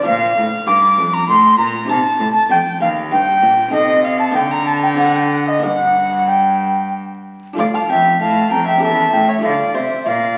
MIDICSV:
0, 0, Header, 1, 5, 480
1, 0, Start_track
1, 0, Key_signature, -2, "minor"
1, 0, Tempo, 614125
1, 48, Time_signature, 3, 2, 24, 8
1, 3408, Tempo, 644468
1, 5808, Tempo, 620476
1, 7970, End_track
2, 0, Start_track
2, 0, Title_t, "Flute"
2, 0, Program_c, 0, 73
2, 50, Note_on_c, 0, 77, 110
2, 355, Note_off_c, 0, 77, 0
2, 526, Note_on_c, 0, 86, 127
2, 893, Note_on_c, 0, 82, 112
2, 904, Note_off_c, 0, 86, 0
2, 997, Note_off_c, 0, 82, 0
2, 1001, Note_on_c, 0, 84, 119
2, 1233, Note_off_c, 0, 84, 0
2, 1237, Note_on_c, 0, 82, 109
2, 1292, Note_off_c, 0, 82, 0
2, 1480, Note_on_c, 0, 81, 124
2, 1951, Note_off_c, 0, 81, 0
2, 1958, Note_on_c, 0, 79, 119
2, 2013, Note_off_c, 0, 79, 0
2, 2200, Note_on_c, 0, 77, 105
2, 2254, Note_off_c, 0, 77, 0
2, 2437, Note_on_c, 0, 79, 115
2, 2907, Note_off_c, 0, 79, 0
2, 2912, Note_on_c, 0, 75, 111
2, 3148, Note_off_c, 0, 75, 0
2, 3152, Note_on_c, 0, 77, 106
2, 3275, Note_off_c, 0, 77, 0
2, 3280, Note_on_c, 0, 81, 104
2, 3327, Note_off_c, 0, 81, 0
2, 3395, Note_on_c, 0, 79, 116
2, 3440, Note_off_c, 0, 79, 0
2, 3523, Note_on_c, 0, 82, 94
2, 3629, Note_off_c, 0, 82, 0
2, 3634, Note_on_c, 0, 81, 105
2, 3679, Note_off_c, 0, 81, 0
2, 3758, Note_on_c, 0, 79, 99
2, 3802, Note_off_c, 0, 79, 0
2, 3871, Note_on_c, 0, 78, 98
2, 3993, Note_off_c, 0, 78, 0
2, 4002, Note_on_c, 0, 79, 94
2, 4047, Note_off_c, 0, 79, 0
2, 4116, Note_on_c, 0, 78, 96
2, 4245, Note_on_c, 0, 75, 91
2, 4256, Note_off_c, 0, 78, 0
2, 4359, Note_on_c, 0, 78, 101
2, 4370, Note_off_c, 0, 75, 0
2, 4842, Note_on_c, 0, 79, 86
2, 4853, Note_off_c, 0, 78, 0
2, 5327, Note_off_c, 0, 79, 0
2, 5813, Note_on_c, 0, 77, 99
2, 5933, Note_on_c, 0, 81, 101
2, 5945, Note_off_c, 0, 77, 0
2, 6051, Note_on_c, 0, 79, 109
2, 6062, Note_off_c, 0, 81, 0
2, 6291, Note_off_c, 0, 79, 0
2, 6294, Note_on_c, 0, 81, 113
2, 6529, Note_on_c, 0, 82, 107
2, 6541, Note_off_c, 0, 81, 0
2, 6649, Note_off_c, 0, 82, 0
2, 6655, Note_on_c, 0, 79, 101
2, 6769, Note_off_c, 0, 79, 0
2, 6773, Note_on_c, 0, 81, 102
2, 7009, Note_on_c, 0, 79, 102
2, 7021, Note_off_c, 0, 81, 0
2, 7139, Note_on_c, 0, 76, 95
2, 7150, Note_off_c, 0, 79, 0
2, 7248, Note_on_c, 0, 77, 101
2, 7260, Note_off_c, 0, 76, 0
2, 7482, Note_off_c, 0, 77, 0
2, 7486, Note_on_c, 0, 76, 108
2, 7723, Note_off_c, 0, 76, 0
2, 7732, Note_on_c, 0, 77, 104
2, 7970, Note_off_c, 0, 77, 0
2, 7970, End_track
3, 0, Start_track
3, 0, Title_t, "Violin"
3, 0, Program_c, 1, 40
3, 38, Note_on_c, 1, 77, 109
3, 525, Note_on_c, 1, 86, 98
3, 536, Note_off_c, 1, 77, 0
3, 883, Note_on_c, 1, 82, 97
3, 894, Note_off_c, 1, 86, 0
3, 1004, Note_off_c, 1, 82, 0
3, 1010, Note_on_c, 1, 84, 104
3, 1238, Note_off_c, 1, 84, 0
3, 1242, Note_on_c, 1, 82, 101
3, 1479, Note_on_c, 1, 81, 115
3, 1490, Note_off_c, 1, 82, 0
3, 1960, Note_on_c, 1, 79, 98
3, 1972, Note_off_c, 1, 81, 0
3, 2197, Note_off_c, 1, 79, 0
3, 2201, Note_on_c, 1, 77, 89
3, 2264, Note_off_c, 1, 77, 0
3, 2445, Note_on_c, 1, 79, 103
3, 2916, Note_off_c, 1, 79, 0
3, 2922, Note_on_c, 1, 75, 100
3, 3162, Note_on_c, 1, 77, 88
3, 3173, Note_off_c, 1, 75, 0
3, 3281, Note_off_c, 1, 77, 0
3, 3285, Note_on_c, 1, 81, 86
3, 3404, Note_on_c, 1, 79, 90
3, 3415, Note_off_c, 1, 81, 0
3, 3519, Note_on_c, 1, 82, 86
3, 3530, Note_off_c, 1, 79, 0
3, 3636, Note_off_c, 1, 82, 0
3, 3640, Note_on_c, 1, 81, 87
3, 3688, Note_off_c, 1, 81, 0
3, 3763, Note_on_c, 1, 79, 87
3, 3874, Note_off_c, 1, 79, 0
3, 3879, Note_on_c, 1, 78, 94
3, 4001, Note_on_c, 1, 79, 86
3, 4012, Note_off_c, 1, 78, 0
3, 4123, Note_on_c, 1, 78, 85
3, 4134, Note_off_c, 1, 79, 0
3, 4240, Note_off_c, 1, 78, 0
3, 4244, Note_on_c, 1, 75, 74
3, 4361, Note_off_c, 1, 75, 0
3, 4370, Note_on_c, 1, 78, 95
3, 4840, Note_off_c, 1, 78, 0
3, 4845, Note_on_c, 1, 79, 67
3, 5318, Note_off_c, 1, 79, 0
3, 5813, Note_on_c, 1, 74, 92
3, 5861, Note_off_c, 1, 74, 0
3, 5932, Note_on_c, 1, 77, 90
3, 5980, Note_off_c, 1, 77, 0
3, 6054, Note_on_c, 1, 76, 93
3, 6288, Note_off_c, 1, 76, 0
3, 6297, Note_on_c, 1, 77, 90
3, 6522, Note_off_c, 1, 77, 0
3, 6527, Note_on_c, 1, 79, 94
3, 6645, Note_off_c, 1, 79, 0
3, 6651, Note_on_c, 1, 76, 81
3, 6767, Note_off_c, 1, 76, 0
3, 6771, Note_on_c, 1, 76, 96
3, 6998, Note_off_c, 1, 76, 0
3, 7003, Note_on_c, 1, 76, 90
3, 7123, Note_off_c, 1, 76, 0
3, 7126, Note_on_c, 1, 73, 82
3, 7174, Note_off_c, 1, 73, 0
3, 7239, Note_on_c, 1, 74, 94
3, 7482, Note_on_c, 1, 72, 85
3, 7493, Note_off_c, 1, 74, 0
3, 7725, Note_on_c, 1, 74, 85
3, 7737, Note_off_c, 1, 72, 0
3, 7967, Note_off_c, 1, 74, 0
3, 7970, End_track
4, 0, Start_track
4, 0, Title_t, "Harpsichord"
4, 0, Program_c, 2, 6
4, 14, Note_on_c, 2, 62, 59
4, 27, Note_on_c, 2, 65, 63
4, 36, Note_on_c, 2, 70, 64
4, 49, Note_on_c, 2, 46, 70
4, 264, Note_off_c, 2, 46, 0
4, 289, Note_on_c, 2, 45, 65
4, 505, Note_off_c, 2, 45, 0
4, 524, Note_on_c, 2, 43, 70
4, 741, Note_off_c, 2, 43, 0
4, 767, Note_on_c, 2, 41, 71
4, 982, Note_off_c, 2, 41, 0
4, 1007, Note_on_c, 2, 45, 72
4, 1222, Note_off_c, 2, 45, 0
4, 1239, Note_on_c, 2, 46, 72
4, 1436, Note_off_c, 2, 62, 0
4, 1441, Note_on_c, 2, 60, 67
4, 1442, Note_off_c, 2, 65, 0
4, 1447, Note_off_c, 2, 70, 0
4, 1451, Note_on_c, 2, 63, 62
4, 1457, Note_off_c, 2, 46, 0
4, 1465, Note_on_c, 2, 67, 65
4, 1476, Note_on_c, 2, 48, 70
4, 1694, Note_off_c, 2, 48, 0
4, 1714, Note_on_c, 2, 45, 72
4, 1934, Note_off_c, 2, 45, 0
4, 1951, Note_on_c, 2, 41, 71
4, 2172, Note_off_c, 2, 41, 0
4, 2192, Note_on_c, 2, 39, 69
4, 2413, Note_off_c, 2, 39, 0
4, 2435, Note_on_c, 2, 43, 75
4, 2655, Note_off_c, 2, 43, 0
4, 2678, Note_on_c, 2, 46, 72
4, 2872, Note_off_c, 2, 60, 0
4, 2877, Note_off_c, 2, 63, 0
4, 2880, Note_on_c, 2, 60, 59
4, 2884, Note_off_c, 2, 67, 0
4, 2890, Note_on_c, 2, 63, 60
4, 2898, Note_off_c, 2, 46, 0
4, 2902, Note_on_c, 2, 69, 60
4, 2915, Note_on_c, 2, 48, 64
4, 3368, Note_on_c, 2, 58, 63
4, 3372, Note_off_c, 2, 60, 0
4, 3373, Note_off_c, 2, 48, 0
4, 3377, Note_off_c, 2, 63, 0
4, 3377, Note_on_c, 2, 62, 59
4, 3383, Note_off_c, 2, 69, 0
4, 3391, Note_on_c, 2, 70, 56
4, 3402, Note_on_c, 2, 50, 67
4, 3841, Note_off_c, 2, 62, 0
4, 3842, Note_on_c, 2, 60, 60
4, 3846, Note_off_c, 2, 58, 0
4, 3850, Note_on_c, 2, 62, 60
4, 3857, Note_off_c, 2, 70, 0
4, 3862, Note_on_c, 2, 69, 59
4, 4325, Note_off_c, 2, 62, 0
4, 4326, Note_on_c, 2, 58, 52
4, 4327, Note_off_c, 2, 60, 0
4, 4328, Note_off_c, 2, 50, 0
4, 4334, Note_on_c, 2, 62, 54
4, 4337, Note_off_c, 2, 69, 0
4, 4350, Note_on_c, 2, 70, 57
4, 4359, Note_on_c, 2, 43, 63
4, 5626, Note_off_c, 2, 43, 0
4, 5761, Note_off_c, 2, 58, 0
4, 5763, Note_off_c, 2, 62, 0
4, 5772, Note_on_c, 2, 62, 58
4, 5773, Note_off_c, 2, 70, 0
4, 5784, Note_on_c, 2, 65, 58
4, 5795, Note_on_c, 2, 69, 59
4, 5808, Note_on_c, 2, 38, 67
4, 6026, Note_off_c, 2, 38, 0
4, 6053, Note_on_c, 2, 41, 66
4, 6268, Note_off_c, 2, 41, 0
4, 6293, Note_on_c, 2, 45, 63
4, 6507, Note_off_c, 2, 45, 0
4, 6527, Note_on_c, 2, 41, 69
4, 6720, Note_off_c, 2, 62, 0
4, 6726, Note_off_c, 2, 65, 0
4, 6732, Note_off_c, 2, 69, 0
4, 6734, Note_on_c, 2, 61, 62
4, 6743, Note_off_c, 2, 41, 0
4, 6748, Note_on_c, 2, 67, 61
4, 6757, Note_on_c, 2, 69, 59
4, 6771, Note_on_c, 2, 40, 66
4, 6985, Note_off_c, 2, 40, 0
4, 7007, Note_on_c, 2, 45, 63
4, 7206, Note_on_c, 2, 62, 55
4, 7215, Note_off_c, 2, 61, 0
4, 7218, Note_on_c, 2, 65, 60
4, 7221, Note_off_c, 2, 69, 0
4, 7223, Note_off_c, 2, 45, 0
4, 7223, Note_off_c, 2, 67, 0
4, 7231, Note_on_c, 2, 69, 60
4, 7242, Note_on_c, 2, 50, 66
4, 7461, Note_off_c, 2, 50, 0
4, 7481, Note_on_c, 2, 48, 63
4, 7701, Note_off_c, 2, 48, 0
4, 7727, Note_on_c, 2, 46, 65
4, 7944, Note_off_c, 2, 46, 0
4, 7970, Note_off_c, 2, 62, 0
4, 7970, Note_off_c, 2, 65, 0
4, 7970, Note_off_c, 2, 69, 0
4, 7970, End_track
5, 0, Start_track
5, 0, Title_t, "Cello"
5, 0, Program_c, 3, 42
5, 48, Note_on_c, 3, 46, 90
5, 271, Note_off_c, 3, 46, 0
5, 288, Note_on_c, 3, 45, 88
5, 350, Note_off_c, 3, 45, 0
5, 526, Note_on_c, 3, 43, 92
5, 770, Note_on_c, 3, 41, 87
5, 782, Note_off_c, 3, 43, 0
5, 1002, Note_off_c, 3, 41, 0
5, 1006, Note_on_c, 3, 45, 88
5, 1240, Note_off_c, 3, 45, 0
5, 1248, Note_on_c, 3, 46, 79
5, 1481, Note_off_c, 3, 46, 0
5, 1486, Note_on_c, 3, 48, 94
5, 1549, Note_off_c, 3, 48, 0
5, 1723, Note_on_c, 3, 45, 85
5, 1785, Note_off_c, 3, 45, 0
5, 1959, Note_on_c, 3, 41, 90
5, 2021, Note_off_c, 3, 41, 0
5, 2197, Note_on_c, 3, 39, 88
5, 2440, Note_on_c, 3, 43, 86
5, 2452, Note_off_c, 3, 39, 0
5, 2679, Note_on_c, 3, 46, 78
5, 2691, Note_off_c, 3, 43, 0
5, 2917, Note_off_c, 3, 46, 0
5, 2922, Note_on_c, 3, 48, 88
5, 3405, Note_on_c, 3, 50, 85
5, 3416, Note_off_c, 3, 48, 0
5, 4363, Note_on_c, 3, 43, 81
5, 4374, Note_off_c, 3, 50, 0
5, 5658, Note_off_c, 3, 43, 0
5, 5812, Note_on_c, 3, 38, 87
5, 5874, Note_off_c, 3, 38, 0
5, 6055, Note_on_c, 3, 41, 81
5, 6288, Note_off_c, 3, 41, 0
5, 6293, Note_on_c, 3, 45, 86
5, 6526, Note_off_c, 3, 45, 0
5, 6530, Note_on_c, 3, 41, 83
5, 6763, Note_off_c, 3, 41, 0
5, 6768, Note_on_c, 3, 40, 80
5, 7000, Note_off_c, 3, 40, 0
5, 7005, Note_on_c, 3, 45, 74
5, 7241, Note_off_c, 3, 45, 0
5, 7246, Note_on_c, 3, 50, 83
5, 7308, Note_off_c, 3, 50, 0
5, 7488, Note_on_c, 3, 48, 80
5, 7550, Note_off_c, 3, 48, 0
5, 7731, Note_on_c, 3, 46, 84
5, 7965, Note_off_c, 3, 46, 0
5, 7970, End_track
0, 0, End_of_file